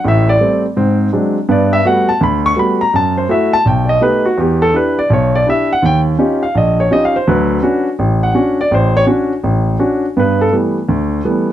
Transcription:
grand piano
0.04 A1 A2 E5
0.29 D5
0.40 G3 A3 C4
0.77 G#2 C4
1.13 F#3 G#3 C4 D4
1.49 G2 B3 D5
1.73 E5
1.85 G3 A3 B3 F#4 F#5
2.09 A5
2.21 D2 B5
2.46 C#6
2.56 G3 A3 B3 F#4 B5
2.81 A#5
2.94 F#2 A5
3.17 C5
3.29 A3 E4 F#4 E5
3.53 A5
3.65 B1 G5
3.85 D5
3.89 D#5
4.01 A3 B3 D#4 G4 B4
4.26 F#4
4.38 E2 G4
4.62 A4
4.74 D4 E4 G4 B4
4.99 D5
5.10 B1 C#5
5.35 D5
5.46 D4 E4 G4 E5
5.73 F#5
5.82 D#2 G5
6.19 C#4 D#4 F4 G4
6.43 F5
6.55 A#1 D#5
6.80 C#5
6.91 C#4 D#4 F4 G4 D#5
7.05 F5
7.16 C5
7.27 D2 F#3 B4
7.63 C#4 D4 F#4
7.99 A1
8.23 F#5
8.35 C#4 D4 F#4
8.61 D5
8.71 A1 C5
8.97 C#5
9.07 C#4 D4 F#4
9.44 A1
9.79 C#4 D4 F#4
10.17 G2 B3 B4
10.41 A4
10.52 E3 G3 A3 B3
10.88 D2
11.25 E3 G3 A3 B3

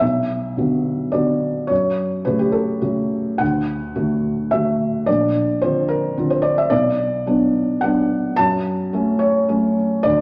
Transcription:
felt piano
0.00 B1 E5
0.57 D3 B3 F#4
1.12 D3 B3 F#4 D5
1.67 F#2 C#5
2.25 C#3 A3 F#4 B4
2.39 G4
2.52 A4
2.81 C#3 A3 F#4
3.38 D2 F#5
3.96 D3 A3 F#4
4.51 D3 A3 F#4 E5
5.06 A#1 D5
5.62 D3 C4 F4 C5
5.88 A#4
6.17 D3 C4 F4
6.30 C5
6.42 D5
6.58 E5
6.70 B1 D5
7.26 F#3 B3 D4
7.81 F#3 B3 D4 F#5
8.36 F#2 A5
8.93 F#3 A3 C#4
9.19 C#5
9.48 F#3 A3 C#4
10.03 D2 D5

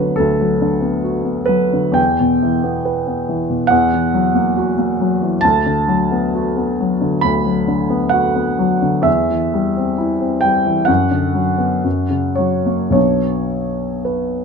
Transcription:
grand piano
Already playing: D2 D3 F#3 B3 F#4 B4 C#5
0.16 D2 A4
0.40 F#3
0.62 D3
0.81 B3
1.04 F#4
1.24 B3
1.46 F#3 B4
1.73 D3
1.92 E2 G5
2.20 B2
2.42 E3
2.63 B3
2.85 B4
3.07 B3
3.29 E3
3.50 B2
3.67 E2 F#5
3.93 E3
4.14 F#3
4.35 A#3
4.57 F#4
4.78 A#3
5.00 F#3
5.22 E3
5.41 D2 A5
5.66 D3
5.88 F#3
6.11 B3
6.34 F#4
6.57 B3
6.80 F#3
7.01 D3
7.21 D2 B5
7.46 F#3
7.68 D3
7.90 B3
8.09 F#4 F#5
8.35 B3
8.59 F#3
8.82 D3
9.01 E2 E5
9.30 E3
9.54 G3
9.76 C4
9.98 E4
10.20 C4
10.41 G3 G5
10.66 E3
10.85 F#2 F#5
11.11 D3
11.35 F#3
11.58 B3
11.84 F#2
12.09 C#3
12.35 F#3 C#5
12.66 A#3
12.90 B1 F#3 B3 D4 C#5
14.05 B4

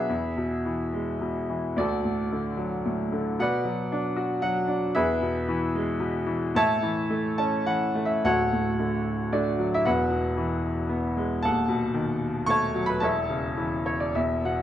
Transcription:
grand piano
Already playing: B2 F#3 B3 D4 G#4 B4 D5 E5 F#5
0.09 E2
0.37 B2
0.65 E3
0.93 G#3
1.21 B2
1.50 E3
1.77 D2 F#4 A4 D5
2.04 A2
2.32 D3
2.57 F#3
2.86 A2
3.12 D3
3.39 B2 B4 D5 F#5
3.65 F#3
3.92 D4
4.16 F#4
4.42 F#3 F#5
4.68 D4
4.95 E2 G#4 B4 E5
5.22 B2
5.48 E3
5.75 G#3
6.00 B2
6.26 E3
6.55 A2 C#5 E5 A5
6.82 E3
7.10 A3
7.38 C#4 A5
7.66 E3 F#5
7.95 A3
8.05 E5
8.24 D1 D2 F#4 A4 C#5 F#5
8.53 A2
8.79 D3
9.33 A3 D4 F#4 D5
9.59 F#3
9.74 E4 E5
9.85 E1 E2 F#4 B4 F#5
10.11 B2
10.37 E3
10.89 B3
11.17 G#3
11.43 D#1 D#2 A4 F#5 A5
11.69 B2
11.94 D#3
12.46 A3 C#5 A5 C#6
12.75 F#3
12.86 B4 B5
13.00 E1 E2 A4 C#5 E5 A5
13.30 C#3
13.57 E3
13.86 C#5
14.00 D5
14.15 E1 E2 E5
14.45 B2 F#5

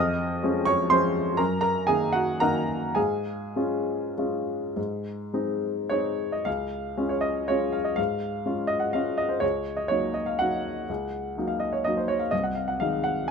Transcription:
grand piano
Already playing: F2 D#5 D#6
0.43 F3 G#3 C#4
0.65 C#5 C#6
0.90 F3 G#3 C#4 C5 C6
1.37 F#2 A#4 A#5
1.61 A#4 A#5
1.87 D#3 A#3 D#4 G#4 G#5
2.13 F#4 F#5
2.40 D#3 A#3 D#4 A#4 F#5 A#5
2.95 G#2 G#4 F5 G#5
3.56 G#3 C#4 F4
4.18 G#3 C#4 F4
4.76 G#2
5.33 G#3 C4 D#4
5.89 G#3 C4 D#4 C#5
6.32 D#5
6.45 C#2 F5
6.97 G#3 C#4 F4
7.09 C#5
7.21 D#5
7.48 G#3 C#4 F4 C#5
7.72 F5
7.84 D#5
7.96 G#2 F5
8.46 G#3 C#4 F4
8.67 D#5
8.80 F#5
8.93 G#3 C#4 F4 F5
9.18 D#5
9.29 C5
9.40 C#2 C#5
9.77 D#5
9.88 F#3 A#3 D#4 C#5
10.14 D#5
10.26 F5
10.39 F#3 A#3 D#4 F#5
10.89 C#2
11.37 F#3 A#3 D#4
11.48 F5
11.60 D#5
11.73 C#5
11.84 F#3 A#3 D#4 D#5
11.97 C5
12.08 C#5
12.19 F5
12.31 C2 D#5
12.43 F#5
12.55 F5
12.68 F#5
12.80 D#3 G#3 D#4 F5
13.04 F#5

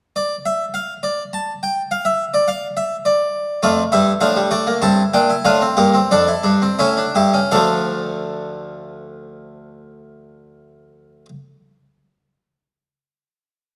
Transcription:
harpsichord
0.16 D5
0.46 E5
0.74 F5
1.03 D5
1.33 A5
1.63 G5
1.91 F5
2.05 E5
2.34 D5
2.48 F5
2.77 E5
3.05 D5
3.63 F2 A3 F4 D5
3.92 G2 G3 E4 E5
4.21 A2 F3 D4 F5
4.36 G3
4.51 A3 D5
4.67 A#3
4.82 G2 C4 E4 A5
5.14 A#2 D4 G5
5.30 E4
5.45 A2 D4 F4 F5
5.61 C4
5.77 G2 A#3 G4
5.94 C4
6.11 F2 D4 A4 D5
6.27 E4
6.43 G2 D4
6.62 C4
6.79 A2 C#4 E4 E5
6.97 D4
7.15 G2 E4 G4
7.34 C#4
7.51 D2 F3 A3 D4 A4 F5

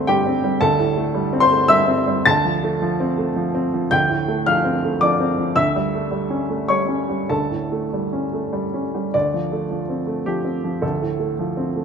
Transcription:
upright piano
Already playing: D2 G3 A3 C4 C5 C6
0.07 G3 G4 G5
0.26 C4
0.44 G3
0.61 D2 A4 A5
0.79 A2
0.97 A3
1.15 G3
1.33 C4
1.40 C5 C6
1.51 A3
1.68 G3 E5 E6
1.88 C4
2.07 G3
2.25 D2 A5 A6
2.45 F3
2.63 A3
2.82 F3
3.00 C4
3.18 A3
3.36 F3
3.54 C4
3.74 F3
3.91 D2 G5 G6
4.09 A2
4.28 A3
4.46 F3 F5 F6
4.65 C4
4.84 A3
5.01 F3 D5 D6
5.20 C4
5.38 F3
5.56 D2 E5 E6
5.76 G3
5.94 A3
6.12 G3
6.30 C#4
6.50 A3
6.68 G3 C#5 C#6
6.89 C#4
7.09 G3
7.30 D2 A4 A5
7.51 A2
7.72 A3
7.93 G3
8.13 C#4
8.33 A3
8.53 G3
8.74 C#4
8.95 G3
9.14 D2 D5
9.34 F3
9.52 A3
9.70 F3
9.89 C4
10.07 A3
10.26 F3 G4
10.45 C4
10.64 F3
10.82 D2 A4
11.02 A2
11.20 A3
11.39 F3
11.57 C4
11.76 A3

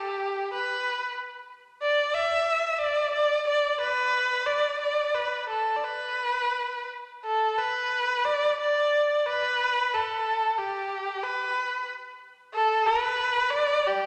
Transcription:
erhu
Already playing: G4
0.53 B4
1.83 D5
2.14 E5
2.72 E5
2.78 D5
3.13 D5
3.47 D5
3.80 B4
4.46 D5
4.81 D5
5.14 B4
5.49 A4
5.76 D5
5.84 B4
7.25 A4
7.58 B4
8.25 D5
8.60 D5
9.19 D5
9.26 B4
9.94 A4
10.57 G4
11.24 B4
12.54 A4
12.86 B4
13.51 D5
13.87 G4

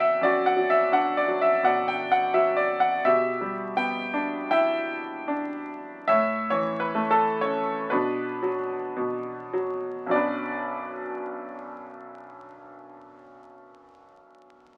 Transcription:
grand piano
Already playing: B2 F#3 D4 D5 F#5 G5
0.00 E5
0.21 F#2 F#4 D5
0.46 F#5
0.56 F#3
0.70 E5
0.92 D4 F#5
1.17 D5
1.28 F#3
1.41 E5
1.63 B2 D5 F#5
1.88 G5
2.12 F#5
2.34 F#3 E5
2.57 D5
2.80 F#5
3.05 B2 G4 E5
3.41 G3
3.77 B3 G5
4.14 D4
4.51 E4 E5 G5
5.28 D4
6.08 A2 C#5 E5
6.50 E3 C#5
6.80 B4
6.95 A3
7.11 A4
7.41 C#4 C#5
7.90 B2 D4 B4
8.43 F#3
8.96 B2
9.53 F#3
10.06 B1 F#2 F#3
10.11 B3 D4 D5
10.16 B4

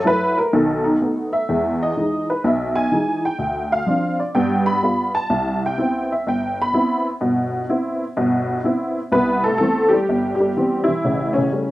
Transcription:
honky-tonk piano
0.04 F#3 A3 E4 B4
0.38 A#4
0.53 B1 D#3 A4
0.84 D#4
1.02 A3 B3 D#4
1.33 E5
1.49 E2 G#3
1.83 D#5
1.97 E3 G#3 D#4
2.30 B4
2.44 B1 E5
2.75 G#5
2.92 E3 G#3 D#4
3.25 G5
3.39 D2
3.72 F5
3.86 F3 C4 D4
4.20 D5
4.35 G2 B3 G5
4.66 B5
4.83 G3 B3 F4
5.15 A5
5.30 C2
5.66 G5
5.78 B3 C4 E4
6.12 E5
6.27 G1 G5
6.62 B5
6.74 B3 C4 E4
7.21 G1 B2
7.69 B3 C4 E4
8.17 G1 B2
8.64 B3 C4 E4
9.12 C2 B3 B4
9.44 A3 A4
9.58 E3 B3 C4 A4
9.62 A3
9.89 G4
9.93 G3
10.09 G1
10.35 G4
10.40 G3
10.56 E3 B3 C4
10.84 E4
10.88 E3
11.05 A1 C#3
11.33 C#4
11.38 C#3
11.52 G3 A3 C#4

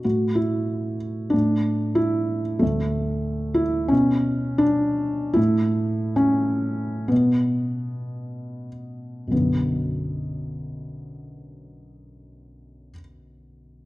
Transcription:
felt piano
0.04 A2 F#4
0.35 E4
1.30 A2 D4
1.95 E4
2.59 D2 A3
3.54 E4
3.88 B2 C#4
4.58 D4
5.34 A2 E4
6.16 C#4
7.08 B2 B3
9.27 B1 F#2 B3
9.34 D3 F#3

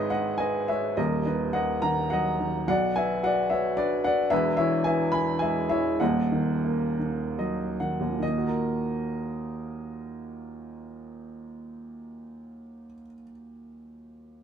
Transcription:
upright piano
Already playing: G#1 G#2 G#3 D#4 B4 C#5 D#5 E5 F#5
0.10 G#3 D#5 F#5
0.38 B3 D#5 G#5
0.68 G#3 C#5 E5
0.97 D#1 D#2 A#4 D#5
1.25 D#3 B4 D#5
1.53 A#3 D#5 F#5
1.82 D#3 F#5 A#5
2.10 F#3 D#5 F#5
2.40 D#3
2.68 B1 B2 D5 F#5
2.96 B3 E5 G#5
3.23 F#4 D5 F#5
3.50 B3 C#5 E5
3.77 D4 B4 D5
4.04 B3 D5 F#5
4.30 E1 E2 B4 E5
4.57 E3 C#5 E5
4.84 B3 E5 G#5
5.12 E3 G#5 B5
5.39 G#3 E5 G#5
5.69 E3 C#5 E5
6.00 D#1 D#2 D#5 F#5
6.32 D#3
6.64 A#3
6.99 D#3
7.38 F#3 D#5
7.80 D#3 F#5
8.00 D#2
8.10 A#2
8.19 D#3 D#5
8.29 A#3
8.38 F#4
8.47 A#4

